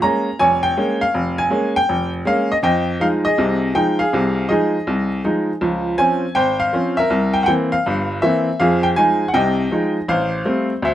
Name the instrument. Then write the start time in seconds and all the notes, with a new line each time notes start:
upright piano
0.02 G#3 A#3 C#4 A#5
0.39 F1 C#5 G#5
0.63 G5
0.77 G#3 A#3 C#4
1.01 F5
1.14 F1
1.38 G#5
1.50 G#3 A#3 C#4
1.76 G5
1.89 F1
2.25 G#3 A#3 C#4 F5
2.52 D#5
2.63 F2 D#5 G5
3.00 F3 G#3 D#4 F5
3.25 G#4 D#5
3.38 C2 C3
3.75 F3 G#3 D#4 G5
3.99 G#4 F5
4.13 C2 C3
4.49 F3 G#3 D#4 G#4 D#5
4.87 C2
5.24 F3 G#3 D#4
5.61 C#2 F3
5.98 F3 C4 C#4 G#5
6.35 G#1 C5 G5
6.60 F5
6.73 F3 C4 C#4
6.97 A#4 E5
7.10 C2
7.34 G5
7.43 F#5 G5
7.48 E3 A#3 C4
7.72 F5
7.86 G1 G2
8.22 E3 A#3 C4 E5
8.60 F2 F3 G#4 F5
8.83 G5
8.96 F3 G#3 D#4 G#5
9.28 F#5
9.34 C2 C3 D#5 G5
9.72 F3 G#3 D#4
10.08 A1 C5 F5
10.45 G3 A3 C4
10.82 D2 C5 E5